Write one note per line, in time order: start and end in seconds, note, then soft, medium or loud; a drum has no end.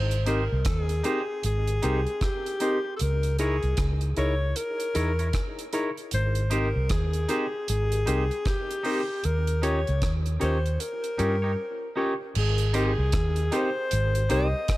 0.00 0.47 G#1 medium
0.00 0.31 C5 medium
0.11 closed hi-hat soft
0.26 0.40 C4 medium
0.26 0.43 D#4 medium
0.26 0.40 D#4 medium
0.26 0.43 G4 medium
0.26 0.40 G4 medium
0.26 0.40 A#4 medium
0.26 0.67 A#4 medium
0.26 0.44 C5 medium
0.26 closed hi-hat medium
0.52 0.65 C2 medium
0.65 1.01 D#2 medium
0.65 1.41 G#4 medium
0.65 kick loud
0.65 cross-stick loud
0.65 closed hi-hat medium
0.89 closed hi-hat soft
1.04 1.18 C4 medium
1.04 1.21 D#4 medium
1.04 1.18 D#4 medium
1.04 1.21 G4 medium
1.04 1.18 G4 medium
1.04 1.18 A#4 medium
1.04 1.22 C5 medium
1.04 closed hi-hat medium
1.43 1.79 G#1 medium
1.43 2.26 G#4 medium
1.43 closed hi-hat loud
1.67 1.74 G4 soft
1.67 1.74 A#4 soft
1.67 closed hi-hat soft
1.82 2.05 C2 medium
1.82 1.99 C4 medium
1.82 1.99 D#4 medium
1.82 2.00 G4 medium
1.82 1.99 G4 medium
1.82 1.99 A#4 medium
1.82 2.00 C5 medium
1.82 closed hi-hat medium
2.07 closed hi-hat soft
2.21 2.96 G4 medium
2.21 kick medium
2.21 cross-stick loud
2.21 closed hi-hat medium
2.46 closed hi-hat soft
2.60 2.77 C4 medium
2.60 2.77 D#4 medium
2.60 2.78 G4 medium
2.60 2.77 G4 medium
2.60 2.77 A#4 medium
2.60 2.78 C5 medium
2.60 closed hi-hat medium
2.85 muted clean electric guitar stroke soft
2.96 3.03 A4 medium
2.96 closed hi-hat medium
3.01 3.59 C#2 medium
3.01 3.38 A#4 loud
3.23 closed hi-hat soft
3.39 3.55 D#4 medium
3.39 3.56 E4 medium
3.39 3.55 E4 medium
3.39 3.89 G#4 medium
3.39 3.55 G#4 medium
3.39 3.56 A#4 medium
3.39 3.55 A#4 medium
3.39 3.56 C#5 medium
3.39 closed hi-hat medium
3.63 3.77 C2 medium
3.63 closed hi-hat soft
3.77 4.13 C#2 medium
3.77 kick loud
3.77 cross-stick loud
3.77 closed hi-hat loud
4.01 closed hi-hat soft
4.17 4.52 C#2 medium
4.17 4.33 D#4 medium
4.17 4.33 E4 medium
4.17 4.34 E4 medium
4.17 4.33 G#4 medium
4.17 4.34 A#4 medium
4.17 4.33 A#4 medium
4.17 4.58 C#5 loud
4.17 4.34 C#5 medium
4.17 closed hi-hat medium
4.56 5.73 A#4 loud
4.56 closed hi-hat medium
4.80 closed hi-hat soft
4.95 5.31 E2 medium
4.95 5.11 D#4 medium
4.95 5.11 E4 medium
4.95 5.11 G#4 medium
4.95 5.12 A#4 medium
4.95 5.11 A#4 loud
4.95 5.12 C#5 medium
4.95 closed hi-hat medium
5.19 5.28 E4 soft
5.19 5.27 A#4 medium
5.19 5.27 C#5 medium
5.19 closed hi-hat soft
5.33 kick medium
5.33 cross-stick loud
5.33 closed hi-hat medium
5.59 closed hi-hat soft
5.73 5.89 D#4 medium
5.73 5.90 E4 medium
5.73 5.89 E4 medium
5.73 5.89 G#4 medium
5.73 5.90 A#4 medium
5.73 5.89 A#4 loud
5.73 5.90 C#5 medium
5.73 closed hi-hat medium
5.97 closed hi-hat soft
6.11 6.72 G#1 medium
6.11 6.55 C5 medium
6.11 closed hi-hat medium
6.35 closed hi-hat soft
6.50 6.67 C4 medium
6.50 6.67 D#4 medium
6.50 6.68 G4 medium
6.50 6.68 A#4 medium
6.50 6.92 A#4 medium
6.50 6.68 C5 loud
6.50 closed hi-hat medium
6.76 6.89 C2 medium
6.89 7.25 D#2 medium
6.89 7.68 G#4 medium
6.89 kick loud
6.89 cross-stick loud
6.89 closed hi-hat loud
7.13 closed hi-hat soft
7.29 7.45 C4 medium
7.29 7.45 D#4 medium
7.29 7.46 G4 medium
7.29 7.45 G4 medium
7.29 7.45 A#4 medium
7.29 7.46 C5 medium
7.29 closed hi-hat medium
7.68 8.04 G#1 loud
7.68 8.49 G#4 medium
7.68 closed hi-hat medium
7.92 7.98 G4 soft
7.92 7.98 A#4 soft
7.92 closed hi-hat medium
8.06 8.29 C2 medium
8.06 8.23 C4 medium
8.06 8.23 D#4 medium
8.06 8.23 G4 medium
8.06 8.23 A#4 medium
8.06 8.24 C5 medium
8.06 closed hi-hat medium
8.31 closed hi-hat soft
8.45 9.27 G4 medium
8.45 kick loud
8.45 cross-stick medium
8.45 closed hi-hat medium
8.71 closed hi-hat soft
8.83 9.01 C4 medium
8.83 9.01 D#4 medium
8.83 9.01 G4 medium
8.83 9.01 A#4 loud
8.83 9.02 C5 medium
8.83 open hi-hat medium
9.08 muted clean electric guitar stroke soft
9.24 9.83 D#2 medium
9.24 9.65 A#4 medium
9.24 closed hi-hat medium
9.47 closed hi-hat soft
9.62 9.79 C#4 medium
9.62 9.79 D#4 medium
9.62 9.79 F4 medium
9.62 9.79 G4 medium
9.62 9.79 A#4 medium
9.62 9.80 C#5 loud
9.62 10.17 C#5 medium
9.62 closed hi-hat medium
9.87 10.01 C#2 medium
9.87 closed hi-hat soft
10.02 kick loud
10.02 cross-stick loud
10.02 closed hi-hat medium
10.26 closed hi-hat soft
10.40 10.77 D#2 medium
10.40 10.56 C#4 medium
10.40 10.57 D#4 medium
10.40 10.57 F4 medium
10.40 10.56 G4 medium
10.40 10.57 G4 medium
10.40 10.57 A#4 medium
10.40 10.82 C5 medium
10.40 10.58 C#5 medium
10.40 closed hi-hat medium
10.66 closed hi-hat soft
10.80 11.97 A#4 loud
10.80 closed hi-hat medium
11.04 closed hi-hat soft
11.18 11.54 G2 medium
11.18 11.34 C#4 medium
11.18 11.35 D#4 medium
11.18 11.35 F4 medium
11.18 11.35 G4 medium
11.18 11.35 A#4 loud
11.18 11.36 C#5 medium
11.18 closed hi-hat medium
11.42 11.51 D#4 medium
11.42 11.51 G4 medium
11.42 11.50 C#5 medium
11.96 12.13 C#4 medium
11.96 12.13 D#4 medium
11.96 12.13 F4 medium
11.96 12.13 G4 medium
11.96 12.13 A#4 loud
11.96 12.13 C#5 medium
12.35 12.95 G#1 loud
12.35 12.73 G#4 medium
12.35 crash medium
12.58 closed hi-hat medium
12.73 12.90 C4 loud
12.73 12.91 D#4 medium
12.73 12.91 G4 medium
12.73 12.91 A#4 loud
12.73 12.91 C5 medium
12.73 closed hi-hat medium
12.78 13.57 G#4 medium
12.98 13.12 C2 medium
13.12 13.49 D#2 medium
13.12 kick loud
13.12 cross-stick loud
13.12 closed hi-hat loud
13.36 closed hi-hat soft
13.52 13.68 C4 medium
13.52 13.69 D#4 medium
13.52 13.68 D#4 medium
13.52 13.69 G4 loud
13.52 13.68 G4 medium
13.52 13.68 A#4 medium
13.52 13.69 C5 medium
13.52 closed hi-hat medium
13.56 14.31 C5 loud
13.91 14.27 G#1 loud
13.91 closed hi-hat medium
14.15 14.22 G4 soft
14.15 14.22 A#4 soft
14.15 closed hi-hat medium
14.29 14.52 C2 loud
14.29 14.46 C4 medium
14.29 14.46 D#4 medium
14.29 14.47 G4 medium
14.29 14.46 G4 medium
14.29 14.46 A#4 loud
14.29 14.47 C5 medium
14.29 14.77 D#5 loud
14.29 closed hi-hat medium
14.68 kick loud
14.68 cross-stick loud
14.68 closed hi-hat medium